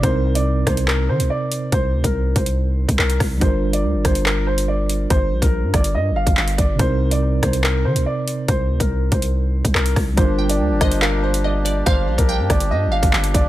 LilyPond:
<<
  \new Staff \with { instrumentName = "Synth pluck" } { \time 4/4 \key g \minor \tempo 4 = 142 r1 | r1 | r1 | r1 |
r1 | r1 | r8 g''4 ees''8 f''4 ees''8 d''8 | f''4 g''4. f''4. | }
  \new Staff \with { instrumentName = "Grand piano" } { \time 4/4 \key g \minor c''8. d''8. c''8 bes'8 c''8 d''4 | c''8. bes'8. c''4. bes'8 r8 | c''8. d''8. c''8 bes'8 c''8 d''4 | c''8. bes'8. d''8 ees''8 f''4 d''8 |
c''8. d''8. c''8 bes'8 c''8 d''4 | c''8. bes'8. c''4. bes'8 r8 | c''8. d''8. c''8 bes'8 c''8 d''4 | c''8. bes'8. d''8 ees''8 f''4 d''8 | }
  \new Staff \with { instrumentName = "Tine electric piano" } { \time 4/4 \key g \minor <c c' ees' bes'>1~ | <c c' ees' bes'>1 | <g d' f' bes'>1~ | <g d' f' bes'>1 |
<c c' ees' bes'>1~ | <c c' ees' bes'>1 | <g d' f' bes'>1~ | <g d' f' bes'>1 | }
  \new Staff \with { instrumentName = "Harmonium" } { \time 4/4 \key g \minor r1 | r1 | r1 | r1 |
r1 | r1 | <f bes d' g'>1~ | <f bes d' g'>1 | }
  \new Staff \with { instrumentName = "808-style bass" } { \clef bass \time 4/4 \key g \minor c,4. c,4 ees16 c,16 r4 | c,8 d,16 c,8. c,4~ c,16 c,16 c,8 c,8 | g,,4 d,16 g,,16 g,,2~ g,,8 | g,,8 bes,,16 bes,,8 g,16 g,,8 g,16. g,,16. g,,16 g,,8 g,,8 |
c,4. c,4 ees16 c,16 r4 | c,8 d,16 c,8. c,4~ c,16 c,16 c,8 c,8 | g,,4 d,16 g,,16 g,,2~ g,,8 | g,,8 bes,,16 bes,,8 g,16 g,,8 g,16. g,,16. g,,16 g,,8 g,,8 | }
  \new DrumStaff \with { instrumentName = "Drums" } \drummode { \time 4/4 <hh bd>8. hh16 r8 <hh bd ss>16 hh16 hc8. hh16 r8 hh8 | <hh bd>8. <hh bd>16 r8 <hh bd>16 hh16 r8. <hh bd>16 hc16 hh16 <hho bd ss>8 | <hh bd>8. hh16 r8 <hh bd ss>16 hh16 hc8. hh16 r8 hh8 | <hh bd>8. <hh bd>16 r8 <hh bd ss>16 hh16 r8. <hh bd>16 hc16 hh16 <hh bd>8 |
<hh bd>8. hh16 r8 <hh bd ss>16 hh16 hc8. hh16 r8 hh8 | <hh bd>8. <hh bd>16 r8 <hh bd>16 hh16 r8. <hh bd>16 hc16 hh16 <hho bd ss>8 | <hh bd>8. hh16 r8 <hh bd ss>16 hh16 hc8. hh16 r8 hh8 | <hh bd>8. <hh bd>16 r8 <hh bd ss>16 hh16 r8. <hh bd>16 hc16 hh16 <hh bd>8 | }
>>